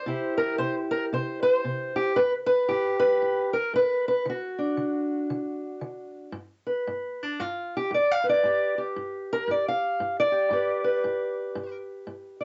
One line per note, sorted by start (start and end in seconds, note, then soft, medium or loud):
0.00 0.37 C5 loud
0.06 0.55 C3 medium
0.06 2.15 E4 medium
0.06 1.95 G4 soft
0.38 0.58 A#4 medium
0.58 1.08 C3 medium
0.58 0.74 C5 loud
0.91 1.03 A#4 loud
1.13 1.61 C3 medium
1.13 1.41 C5 medium
1.43 2.16 C5 medium
1.65 2.13 C3 medium
1.96 2.17 G4 medium
2.16 2.65 G2 medium
2.16 2.32 B4 loud
2.46 2.98 B4 loud
2.69 3.18 G2 medium
2.69 3.53 G4 medium
3.00 3.53 B4 loud
3.22 3.70 G2 medium
3.53 3.74 A#4 medium
3.74 4.22 G2 medium
3.74 4.07 B4 medium
4.08 4.27 B4 medium
4.25 4.74 D3 medium
4.30 6.37 F#4 medium
4.59 6.33 D4 soft
4.77 5.26 D3 medium
5.30 5.79 D3 medium
5.81 6.30 D3 medium
6.32 6.82 G2 medium
6.67 7.23 B4 soft
6.87 7.36 G2 medium
7.23 7.40 D4 loud
7.40 7.88 G2 medium
7.40 7.75 F4 medium
7.77 7.93 G4 medium
7.91 8.40 G2 medium
7.91 8.11 D5 medium
8.11 8.28 F5 medium
8.24 9.32 B4 soft
8.29 8.80 D5 medium
8.44 8.92 G2 medium
8.44 8.78 G4 soft
8.78 10.31 G4 soft
8.96 9.45 G2 medium
9.33 9.50 A#4 loud
9.48 9.96 G2 medium
9.48 9.67 D5 medium
9.68 10.19 F5 medium
10.00 10.49 G2 medium
10.20 11.76 D5 loud
10.32 10.52 G4 soft
10.51 11.00 G2 medium
10.51 12.44 G4 soft
10.51 10.84 B4 soft
10.84 12.44 B4 soft
11.04 11.53 G2 medium
11.55 12.05 G2 medium
12.07 12.44 G2 medium
12.41 12.44 D5 soft